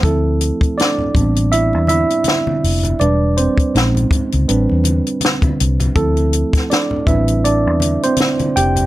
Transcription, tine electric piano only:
0.04 F3 A3 C4 E4 A4
0.78 D4 D5
1.15 G3 B3 C4 D4
1.52 E4 E5
1.88 E4 E5
3.00 G3 D4 B4 D5
3.37 C4 C5
3.74 G#3 C4 C#4 D#4
4.48 G3 C4 D4 B4
5.96 F3 A3 C4 E4 A4
6.70 D4 D5
7.07 G3 C4 D4 E4 B4 E5
7.44 D4 D5
8.04 C4 C5
8.56 G4 G5

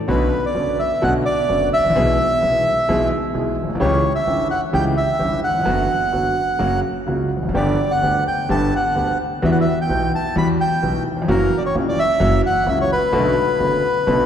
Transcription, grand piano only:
0.08 B1 B2 D3 B3 C#4 F#4
0.55 F#1 F#2 D3 B3 C#4 F#4
1.02 B1 B2 D3 B3 C#4 F#4
1.49 F#1 F#2 D3 B3 C#4 F#4
1.79 G#1
1.84 A1
1.90 A#1
1.95 B1 B2 E3 G#3 B3 G#4
2.42 B1 B2 E3 G#3 B3 G#4
2.88 B1 B2 E3 G#3 B3 G#4
3.34 B1 B2 E3 G#3 B3 G#4
3.64 A#1
3.69 B1
3.75 C2
3.80 C#2 C#3 E3 G3 C#4 G4
4.27 G1 G2 E3 G3 C#4 G4
4.73 C#2 C#3 E3 G3 C#4 G4
5.19 G1 G2 E3 G3 C#4 G4
5.48 D#2
5.54 E2
5.60 F2
5.65 F#2 D3 F#3 B3 F#4
6.12 F#2 D3 F#3 B3 F#4
6.59 F#2 C#3 F#3 A#3 F#4
7.07 C#2 C#3 F#3 A#3 F#4
7.37 E2
7.43 F2
7.49 F#2
7.54 G1 G2 D3 G3 B3 G4
8.02 D2 D3 G3 B3 G4
8.49 G1 G2 D3 G3 B3 G4
8.95 D2 D3 G3 B3 G4
9.42 E2 E3 G3 B3 F#4
9.89 B1 B2 E3 G3 B3 F#4
10.36 E2 E3 G3 B3 F#4
10.82 B1 B2 E3 G3 B3 F#4
11.11 D#2
11.17 E2
11.22 F2
11.28 F#2 E3 F#3 A#3 C#4 F#4
11.75 C#2 C#3 E3 A#3 C#4 F#4
12.20 F#2 E3 F#3 A#3 C#4 F#4
12.66 C#2 C#3 E3 A#3 C#4 F#4
13.12 B1 B2 D3 A3 B3 F#4
13.59 F#1 F#2 D3 A3 B3 F#4
14.07 B1 B2 D3 A3 B3 F#4

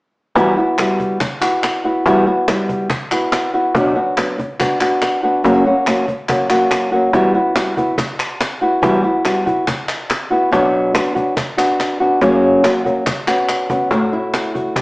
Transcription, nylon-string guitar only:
0.35 E3 G3 B3 E4 F#4
0.57 B3 E4 F#4
0.78 G3 B3 E4 F#4
1.20 muted nylon-string guitar stroke
1.41 B3 E4 F#4
1.84 B3 E4 F#4
2.05 E3 G3 B3 E4 F#4
2.26 B3 E4 F#4
2.48 G3 B3 E4 F#4
2.90 muted nylon-string guitar stroke
3.12 B3 E4 F#4
3.54 B3 E4 F#4
3.75 B2 F#3 B3 D4 F#4
3.95 B3 D4 F#4
4.17 F#3 B3 D4 F#4
4.38 muted nylon-string guitar stroke
4.59 B3 D4 F#4
4.81 B3 D4 F#4
5.23 B3 D4 F#4
5.44 F#2 C#3 F#3 A#3 C#4 F#4
5.66 F#3 A#3 C#4 F#4
5.87 F#3 A#3 C#4 F#4
6.08 muted nylon-string guitar stroke
6.29 F#3 A#3 C#4 F#4
6.50 F#3 A#3 C#4 F#4
6.92 F#3 A#3 C#4 F#4
7.13 E3 G3 B3 E4 F#4
7.34 B3 E4 F#4
7.55 G3 B3 E4 F#4
7.77 B3 E4 F#4
7.98 muted nylon-string guitar stroke
8.61 B3 E4 F#4
8.82 E3 G3 B3 E4 F#4
9.04 B3 E4 F#4
9.24 G3 B3 E4 F#4
9.46 B3 E4 F#4
9.67 muted nylon-string guitar stroke
10.30 B3 E4 F#4
10.51 B2 F#3 B3 D4 F#4
10.94 F#3 B3 D4 F#4
11.15 B3 D4 F#4
11.36 muted nylon-string guitar stroke
11.57 B3 D4 F#4
12.00 B3 D4 F#4
12.21 F#2 C#3 F#3 A#3 C#4 F#4
12.63 F#3 A#3 C#4 F#4
12.84 F#3 A#3 C#4 F#4
13.06 muted nylon-string guitar stroke
13.27 B3 C#4 F#4
13.70 B3 C#4 F#4
13.91 A2 F#4
14.13 E4
14.55 F#4
14.77 G4

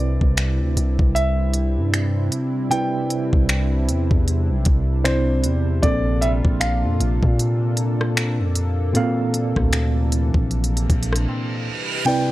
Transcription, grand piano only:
Already playing: D5
1.15 E5
2.71 G5
5.04 C5
5.83 D5
6.21 E5
6.60 F5
12.06 G5

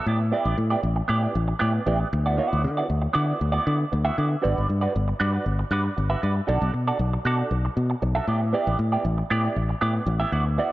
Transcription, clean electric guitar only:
0.07 B3 E4 G4 D5
0.20 muted clean electric guitar stroke
0.32 B3 E4 G4 D5
0.57 muted clean electric guitar stroke
0.70 B3 E4 G4 D5
0.82 muted clean electric guitar stroke
0.96 muted clean electric guitar stroke
1.08 B3 E4 G4 D5
1.23 B3 E4 G4 D5
1.35 muted clean electric guitar stroke
1.48 muted clean electric guitar stroke
1.59 B3 E4 G4 D5
1.74 muted clean electric guitar stroke
1.86 B3 E4 G4 D5
2.00 muted clean electric guitar stroke
2.13 muted clean electric guitar stroke
2.26 B3 E4 F#4 D5
2.37 B3 E4 F#4 D5
2.64 muted clean electric guitar stroke
2.77 B3 E4 F#4 D5
2.88 muted clean electric guitar stroke
3.02 muted clean electric guitar stroke
3.13 B3 E4 F#4 D5
3.26 B3 E4 F#4 D5
3.39 muted clean electric guitar stroke
3.52 B3 E4 F#4 D5
3.65 B3 E4 F#4 D5
3.80 muted clean electric guitar stroke
3.92 muted clean electric guitar stroke
4.05 B3 E4 F#4 E5
4.17 B3 E4 F#4 D5
4.30 muted clean electric guitar stroke
4.42 D4 F#4 B4 D5
4.68 muted clean electric guitar stroke
4.81 D4 F#4 B4 D5
4.94 muted clean electric guitar stroke
5.08 muted clean electric guitar stroke
5.20 D4 F#4 B4 D5
5.33 D4 F#4 B4 D5
5.46 muted clean electric guitar stroke
5.59 muted clean electric guitar stroke
5.71 D4 F#4 B4 D5
5.85 muted clean electric guitar stroke
5.97 muted clean electric guitar stroke
6.10 D4 F#4 B4 E5
6.22 D4 F#4 B4 D5
6.36 muted clean electric guitar stroke
6.47 D4 F#4 A4 D5
6.73 muted clean electric guitar stroke
6.88 D4 F#4 A4 D5
6.99 muted clean electric guitar stroke
7.13 muted clean electric guitar stroke
7.25 D4 F#4 A4 D5
7.39 D4 F#4 A4 D5
7.51 muted clean electric guitar stroke
7.65 muted clean electric guitar stroke
7.90 muted clean electric guitar stroke
8.02 muted clean electric guitar stroke
8.15 D4 F#4 A4 E5
8.27 B3 E4 G4 D5
8.42 muted clean electric guitar stroke
8.53 B3 E4 G4 D5
8.92 B3 E4 G4 D5
9.05 muted clean electric guitar stroke
9.18 muted clean electric guitar stroke
9.30 B3 E4 G4 D5
9.44 B3 E4 G4 D5
9.57 muted clean electric guitar stroke
9.69 muted clean electric guitar stroke
9.81 B3 E4 G4 D5
9.95 muted clean electric guitar stroke
10.07 muted clean electric guitar stroke
10.20 B3 E4 G4 E5
10.32 B3 E4 F#4 D5
10.46 muted clean electric guitar stroke
10.58 B3 E4 F#4 D5

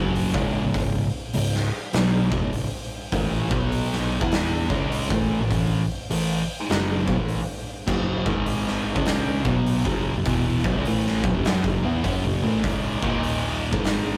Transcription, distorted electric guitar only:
Already playing: F#2 C#3 F#3
0.34 C#2 G#2 C#3
0.64 C#2 G#2
0.74 C#2 G#2
1.34 C#2 G#2
1.93 B2 F#3 B3
2.32 E2 B2
2.42 C#2 G#2
3.12 A2 E3 A3
3.50 B2 F#3 B3
4.21 E3 B3 E4
4.70 C#3 G#3 C#4
5.10 A2 E3 A3
5.40 A2 E3
5.51 A2 E3
6.10 A2 E3
6.69 F#2 C#3 F#3
7.06 B2 F#3
7.17 A2 E3
7.87 F#2 C#3 F#3
8.26 G#2 D#3 G#3
8.96 C#3 G#3 C#4
9.45 B2 F#3 B3
9.86 F#2 C#3 F#3
10.16 F#2 C#3
10.26 E2 B2 E3
10.65 B2 F#3
10.75 C#3 G#3
10.87 A2 E3 A3
11.24 B2 F#3
11.34 F#2 C#3
11.45 F#3 C#4
11.65 F#2 C#3
11.84 E3 B3 E4
12.04 F#3 C#4
12.24 F#2 C#3
12.43 A2 E3 A3
12.64 C#2 G#2 C#3
13.03 D#2 A#2 D#3
13.72 G#2 D#3 G#3

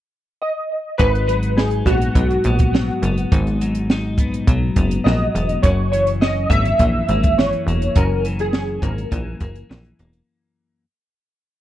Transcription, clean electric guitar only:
0.99 G#2 D#4
1.28 F#3
1.58 D#4
1.87 B3
2.16 F#3
2.46 B3
2.74 F#3
3.04 B3
3.32 G#2 D#4
3.62 F#3
3.92 D#4
4.20 B3
4.49 F#3
4.78 B3
5.06 F#3
5.35 B3
5.65 F#2 C#4
5.93 E3
6.23 C#4
6.51 A#3
6.81 E3
7.10 A#3
7.39 E3
7.68 A#3
7.97 F#2 C#4
8.26 E3
8.54 C#4
8.83 A#3
9.12 E3
9.42 A#3
9.69 E3
10.00 A#3

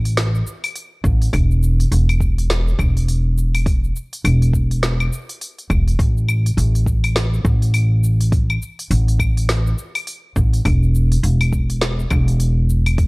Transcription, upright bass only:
Already playing: A1
1.04 A1
1.33 E1
1.92 E1
2.79 E1
4.24 E1
5.70 E1
5.99 A1
6.57 A1
7.45 A1
8.90 A1
10.36 A1
10.65 E1
11.23 E1
12.11 E1

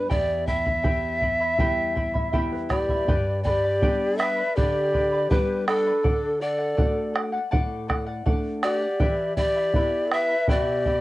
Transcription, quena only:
2.71 G4
3.46 A4
3.50 G4
4.20 B4
4.56 G4
5.30 G4
5.68 D4
6.42 A4
8.64 F#4
8.75 G4
9.37 G4
10.12 B4
10.50 G4

